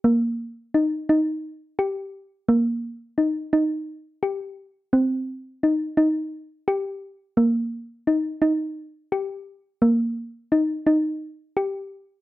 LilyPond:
\new Staff \with { instrumentName = "Synth arpeggio sound" } { \time 7/8 \key ees \major \tempo 4 = 86 bes4 ees'8 ees'4 g'4 | bes4 ees'8 ees'4 g'4 | c'4 ees'8 ees'4 g'4 | bes4 ees'8 ees'4 g'4 |
bes4 ees'8 ees'4 g'4 | }